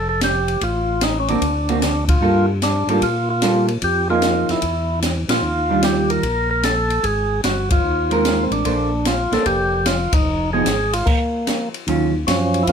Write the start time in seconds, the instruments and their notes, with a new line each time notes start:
Already playing: tonewheel organ F1
0.09 tonewheel organ A4
0.21 tonewheel organ G4, snare, hi-hat pedal, ride
0.48 ride
0.61 tonewheel organ A1 F4, kick, ride
1.01 tonewheel organ D#4, snare, hi-hat pedal, ride
1.20 tonewheel organ C#4
1.28 hollow-body jazz guitar D3 A#3 C4 F#4, tonewheel organ D4, ride
1.41 tonewheel organ D2, kick, ride
1.69 hollow-body jazz guitar D3 A#3 C4 F#4, ride
1.82 snare, hi-hat pedal, ride
2.08 tonewheel organ F4, kick, ride
2.21 tonewheel organ G2, hollow-body jazz guitar G3 A#3 F4 A4
2.62 tonewheel organ D4, snare, hi-hat pedal, ride
2.87 tonewheel organ G#2 D4, hollow-body jazz guitar G3 A#3 F4 A4, ride
3.02 tonewheel organ A#2 F4, kick, ride
3.30 tonewheel organ F4
3.42 hollow-body jazz guitar G3 A#3 F4 A4, snare, hi-hat pedal, ride
3.68 ride
3.82 tonewheel organ F2 G4, kick, ride
4.09 hollow-body jazz guitar F3 A#3 D#4 G#4, tonewheel organ F4
4.22 snare, hi-hat pedal, ride
4.49 tonewheel organ F2 E4, snare, ride
4.62 tonewheel organ E2, kick, ride
5.02 snare, hi-hat pedal, ride
5.28 tonewheel organ A#2 F4, snare, ride
5.42 tonewheel organ D#2
5.70 hollow-body jazz guitar D#3 G3 D4 F4
5.83 tonewheel organ G4, snare, hi-hat pedal, ride
6.10 tonewheel organ A#4, ride
6.23 tonewheel organ A#1, kick, ride
6.51 tonewheel organ A#4
6.63 tonewheel organ A4, snare, hi-hat pedal, ride
6.90 ride
7.03 tonewheel organ G#1 G#4, kick, ride
7.43 tonewheel organ G1 F#4, snare, hi-hat pedal, ride
7.70 tonewheel organ F4, kick, ride
7.84 tonewheel organ D#2
8.11 hollow-body jazz guitar G#3 C4 A#4, ride
8.25 snare, hi-hat pedal, ride
8.43 tonewheel organ C4
8.50 tonewheel organ A1 D4, ride
8.65 tonewheel organ A#1, hollow-body jazz guitar A#3 D4 A4 C5, kick, ride
9.05 tonewheel organ F4, snare, hi-hat pedal, ride
9.31 tonewheel organ A#1 A4, hollow-body jazz guitar A#3 D4 A4 C5, snare, ride
9.45 tonewheel organ F1 G4, kick, ride
9.86 tonewheel organ F4, snare, hi-hat pedal, ride
10.12 tonewheel organ F#1 D#4, kick, ride
10.25 tonewheel organ F1
10.53 hollow-body jazz guitar F3 B3 D#4 G#4, tonewheel organ G#4
10.65 tonewheel organ G#1, snare, hi-hat pedal, ride
10.93 tonewheel organ F4, ride
11.06 tonewheel organ A#3, kick, crash
11.47 snare, hi-hat pedal, ride
11.74 ride
11.87 tonewheel organ D#2, hollow-body jazz guitar D#3 F#3 C#4 F4, kick, ride
12.27 tonewheel organ F#2 F3 C#4, kick, snare, hi-hat pedal, ride
12.54 ride
12.63 tonewheel organ E4
12.67 tonewheel organ F2 A#3 C#4 F4, kick, ride